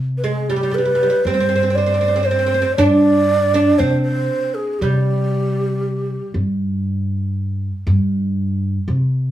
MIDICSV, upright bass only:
0, 0, Header, 1, 2, 480
1, 0, Start_track
1, 0, Tempo, 1016949
1, 2273, Time_signature, 10, 3, 24, 8
1, 4395, End_track
2, 0, Start_track
2, 0, Title_t, "Upright bass"
2, 0, Program_c, 0, 32
2, 0, Note_on_c, 0, 48, 77
2, 503, Note_off_c, 0, 48, 0
2, 590, Note_on_c, 0, 43, 71
2, 1225, Note_off_c, 0, 43, 0
2, 1313, Note_on_c, 0, 43, 86
2, 1735, Note_off_c, 0, 43, 0
2, 1792, Note_on_c, 0, 48, 75
2, 2004, Note_off_c, 0, 48, 0
2, 2272, Note_on_c, 0, 48, 77
2, 2905, Note_off_c, 0, 48, 0
2, 2993, Note_on_c, 0, 43, 75
2, 3626, Note_off_c, 0, 43, 0
2, 3713, Note_on_c, 0, 43, 82
2, 4134, Note_off_c, 0, 43, 0
2, 4190, Note_on_c, 0, 48, 77
2, 4395, Note_off_c, 0, 48, 0
2, 4395, End_track
0, 0, End_of_file